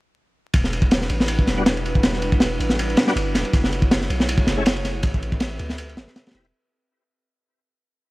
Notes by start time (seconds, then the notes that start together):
0.54 E1, kick, ride
0.64 snare
0.73 ride
0.82 kick
0.91 snare, ride
1.01 snare
1.09 A1 G3 D4 E4 F#4 B4, ride
1.20 snare
1.28 ride
1.39 kick
1.47 E1, snare, ride
1.57 G3 B3 D4 F#4
1.66 snare, ride
1.77 ride
1.85 ride
1.95 kick
2.03 E1, snare, ride
2.13 snare
2.22 ride
2.32 kick
2.40 snare, ride
2.60 A1 G3 D4 E4 F#4 B4, ride
2.69 snare
2.79 ride
2.90 ride
2.97 snare, ride
3.07 G3 B3 D4 F#4, snare
3.16 G1, ride
3.35 E1, snare, ride
3.45 ride
3.53 F#1, kick, ride
3.64 snare
3.72 ride
3.82 kick
3.91 snare, ride
4.01 snare
4.09 B1 A3 E4 F#4 G#4 C#5, ride
4.20 snare
4.29 ride
4.38 kick
4.47 F#1, snare, ride
4.57 A3 C#4 E4 G#4
4.66 snare, ride
4.76 ride
4.85 snare, ride
5.03 A1, kick, ride
5.14 kick
5.23 ride
5.32 kick
5.40 snare, ride
5.59 D2 C4 G4 A4 B4 E5, ride
5.69 snare
5.78 ride
5.89 ride
5.97 G1, snare, ride
6.07 snare
6.16 snare, ride
6.27 snare, ride
6.31 E1 B4, snare, ride
6.35 C4 E4 G4, snare, ride
6.45 ride